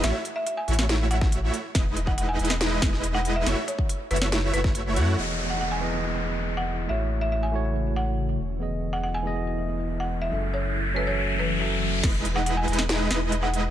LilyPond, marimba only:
\new Staff \with { instrumentName = "Marimba" } { \time 4/4 \key e \major \tempo 4 = 140 e''16 r8 e''16 e''16 gis''16 r4 fis''8. r8. | r8. fis''16 fis''16 gis''4 r4 fis''8 e''16 | r8 cis''16 r8. b'16 cis''16 r8 b'4 r8 | r8. fis''16 fis''16 gis''4 r4 fis''8. |
e''16 r8 e''16 e''16 gis''16 r4 fis''8. r8. | r8. fis''16 fis''16 gis''4 r4 fis''8 e''16 | r8 cis''16 r8. b'16 cis''16 r8 b'4 r8 | r8. fis''16 fis''16 gis''4 r4 fis''8. | }